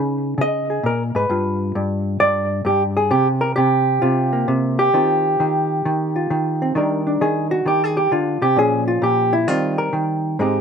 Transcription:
0.00 0.37 C#3 medium
0.00 1.28 D#4 soft
0.00 0.69 G#4 soft
0.00 0.38 B4 medium
0.38 0.83 C#3 medium
0.38 1.16 D#5 loud
0.70 0.84 G#4 soft
0.83 1.14 A#2 medium
0.83 1.02 A#4 medium
1.15 1.29 G#2 medium
1.15 2.20 B4 medium
1.30 1.74 G2 medium
1.30 3.10 F4 soft
1.75 2.19 G2 medium
2.20 2.63 G2 medium
2.20 2.65 D5 loud
2.65 3.10 G2 medium
2.65 2.82 G4 medium
2.97 3.11 G#4 medium
3.11 3.56 C3 medium
3.11 3.27 G4 medium
3.41 3.55 A#4 medium
3.56 4.01 C3 medium
3.56 4.47 G4 medium
4.02 4.47 C3 medium
4.02 4.93 F4 medium
4.33 4.94 A#3 soft
4.48 4.93 C3 medium
4.79 6.75 G4 medium
4.94 5.39 D#3 medium
4.94 6.60 C4 soft
4.94 6.15 F4 soft
5.40 5.84 D#3 medium
5.85 6.29 D#3 medium
6.16 6.74 F4 soft
6.30 6.73 D#3 medium
6.62 6.74 C4 medium
6.75 7.20 D#3 medium
6.75 8.55 G3 soft
6.75 7.06 D4 soft
6.75 7.67 A#4 soft
7.07 8.55 D4 soft
7.21 7.64 D#3 medium
7.21 7.51 G#4 medium
7.51 7.66 F#4 medium
7.66 8.11 D#3 medium
7.66 7.82 G4 medium
7.84 7.97 G#4 medium
7.97 8.11 G4 medium
8.12 8.41 D3 medium
8.12 8.42 F4 medium
8.42 8.56 C3 medium
8.42 8.57 G4 medium
8.56 9.00 A#2 medium
8.56 9.47 F3 soft
8.56 9.46 C#4 medium
8.56 8.87 G#4 medium
8.88 9.02 F4 medium
9.02 9.45 A#2 medium
9.02 9.33 G4 medium
9.33 9.48 E4 medium
9.48 9.92 D#3 medium
9.48 10.37 G3 soft
9.48 10.40 C4 soft
9.48 9.78 F4 medium
9.78 9.93 A#4 medium
9.93 10.36 D#3 medium
10.39 10.61 G#2 medium
10.39 10.61 G#3 medium
10.39 10.61 C4 medium
10.39 10.61 D#4 soft
10.39 10.61 G4 soft

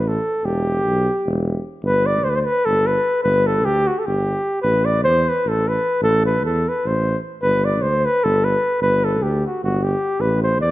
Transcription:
0.00 0.18 A1 loud
0.08 0.47 A4 medium
0.43 0.87 E1 medium
0.43 1.66 G4 medium
0.85 1.08 B1 medium
1.26 1.57 E1 loud
1.83 2.26 G1 loud
1.83 2.08 B4 loud
2.06 2.26 D5 medium
2.24 2.47 D2 medium
2.24 2.32 C5 loud
2.30 2.37 B4 medium
2.36 2.41 C5 loud
2.41 2.47 C5 medium
2.45 2.67 B4 loud
2.66 2.97 G1 medium
2.66 2.88 A4 loud
2.87 3.23 B4 medium
3.24 3.66 G1 loud
3.24 3.48 B4 loud
3.47 3.67 A4 medium
3.65 3.88 D2 medium
3.65 3.89 G4 loud
3.88 4.01 F#4 medium
3.99 4.08 A4 medium
4.06 4.38 G1 medium
4.06 4.62 G4 loud
4.62 5.07 A1 loud
4.62 4.87 B4 loud
4.86 5.04 D5 loud
5.04 5.28 E2 medium
5.04 5.31 C5 loud
5.29 5.50 B4 loud
5.46 5.77 A1 medium
5.46 5.70 A4 loud
5.69 6.03 B4 loud
6.02 6.46 A1 loud
6.02 6.24 A4 loud
6.26 6.43 B4 loud
6.44 6.67 E2 loud
6.44 6.70 A4 medium
6.69 6.89 B4 medium
6.85 7.17 A1 medium
6.85 7.19 C5 medium
7.42 7.85 G1 loud
7.42 7.67 B4 loud
7.65 7.84 D5 medium
7.82 8.06 D2 medium
7.82 8.07 C5 medium
8.05 8.26 B4 loud
8.24 8.56 G1 loud
8.24 8.46 A4 loud
8.45 8.81 B4 loud
8.81 9.23 G1 loud
8.81 9.06 B4 loud
9.05 9.24 A4 medium
9.22 9.45 D2 medium
9.22 9.45 G4 medium
9.47 9.63 F#4 medium
9.63 9.94 G1 loud
9.63 9.85 F#4 medium
9.84 10.22 G4 medium
10.19 10.62 A1 loud
10.19 10.43 B4 loud
10.43 10.60 C5 medium
10.61 10.71 E2 medium
10.61 10.71 D5 loud

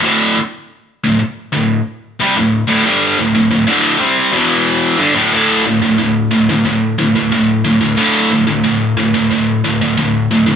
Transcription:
0.03 0.35 D2 loud
0.03 0.36 A2 loud
0.03 0.36 D3 loud
0.36 muted distorted electric guitar stroke medium
1.04 1.18 D2 medium
1.04 1.21 A2 medium
1.19 muted distorted electric guitar stroke medium
1.52 1.79 D2 medium
1.52 1.80 A2 medium
2.20 2.35 C3 medium
2.20 2.35 G3 loud
2.36 2.62 D2 medium
2.36 2.62 A2 medium
2.68 2.83 D2 loud
2.68 2.84 A2 loud
2.85 3.17 G2 medium
2.85 3.17 D3 loud
2.85 3.17 G3 loud
3.19 3.34 D2 medium
3.19 3.34 A2 medium
3.35 3.50 D2 medium
3.35 3.50 A2 medium
3.51 3.65 D2 medium
3.51 3.66 A2 medium
3.67 3.99 D2 medium
3.67 3.99 A2 medium
3.67 4.00 D3 loud
3.99 4.32 C3 medium
3.99 4.32 G3 loud
3.99 4.32 C4 loud
4.32 4.97 E2 medium
4.32 4.98 B2 loud
4.32 4.98 E3 loud
4.98 5.14 G2 medium
4.98 5.14 D3 medium
5.15 5.31 D2 medium
5.15 5.31 A2 loud
5.34 5.64 D2 medium
5.34 5.64 A2 medium
5.34 5.65 D3 loud
5.66 5.81 D2 medium
5.66 5.81 A2 medium
5.82 5.97 D2 medium
5.82 5.98 A2 medium
5.98 6.28 D2 medium
5.98 6.29 A2 medium
6.31 6.48 D2 medium
6.31 6.48 A2 medium
6.49 6.64 D2 medium
6.49 6.64 A2 medium
6.65 6.95 D2 medium
6.65 6.95 A2 medium
6.98 7.15 D2 medium
6.98 7.14 A2 medium
7.15 7.31 D2 medium
7.15 7.32 A2 medium
7.32 7.62 D2 medium
7.32 7.62 A2 medium
7.64 7.80 D2 medium
7.64 7.79 A2 medium
7.81 7.96 D2 medium
7.81 7.96 A2 medium
7.97 8.29 D2 medium
7.97 8.29 A2 medium
7.97 8.29 D3 medium
8.31 8.46 D2 medium
8.31 8.46 A2 medium
8.47 8.63 D2 medium
8.47 8.63 A2 medium
8.64 8.94 D2 medium
8.64 8.94 A2 medium
8.97 9.14 D2 medium
8.97 9.13 A2 medium
9.14 9.30 D2 medium
9.14 9.30 A2 medium
9.31 9.60 D2 medium
9.31 9.61 A2 medium
9.64 9.80 D2 medium
9.64 9.80 A2 medium
9.81 9.96 D2 medium
9.81 9.97 A2 medium
9.97 10.27 D2 medium
9.97 10.27 A2 medium
10.31 10.45 D2 medium
10.31 10.45 A2 medium
10.46 10.56 D2 medium
10.46 10.56 A2 medium

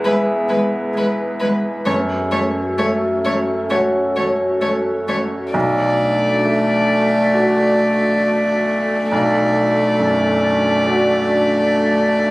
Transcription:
0.00 1.83 E2 medium
0.00 0.59 B3 medium
0.00 1.82 B3 medium
0.00 1.86 G#4 medium
0.00 1.86 B4 medium
0.04 0.12 G#3 medium
0.04 1.83 G#4 soft
0.04 0.13 B4 medium
0.04 1.83 E5 medium
0.49 0.57 G#3 medium
0.49 0.57 B4 soft
0.94 1.02 G#3 soft
0.94 1.05 B4 medium
1.40 1.49 G#3 medium
1.40 1.48 B4 soft
1.85 5.51 F#2 medium
1.85 1.93 A3 medium
1.85 5.55 C#4 medium
1.85 5.54 F#4 medium
1.85 5.54 A4 medium
1.85 1.94 C#5 soft
2.31 2.40 A3 soft
2.31 2.39 C#5 soft
2.78 2.86 A3 soft
2.78 4.26 A3 soft
2.78 2.86 C#5 soft
3.25 3.34 A3 soft
3.25 3.33 C#5 soft
3.70 3.78 A3 soft
3.70 5.51 F#4 soft
3.70 3.78 C#5 soft
3.70 5.51 C#5 soft
4.16 4.25 A3 soft
4.16 4.24 C#5 soft
4.61 4.69 A3 soft
4.61 4.69 C#5 soft
5.08 5.16 A3 soft
5.08 5.16 C#5 soft
5.53 9.07 B1 medium
5.53 9.07 A3 medium
5.53 9.12 D4 medium
5.53 9.08 F#4 medium
5.53 9.08 A4 medium
5.53 9.07 D5 medium
6.45 7.88 A3 soft
7.34 9.08 F#4 soft
7.34 9.08 D5 soft
9.12 12.31 B1 medium
9.12 12.31 A3 medium
9.12 12.31 D4 medium
9.12 12.31 F#4 medium
9.12 12.31 A4 medium
9.12 12.31 D5 medium
9.99 11.36 F#2 soft
10.86 12.31 F#4 soft
10.86 12.31 D5 medium

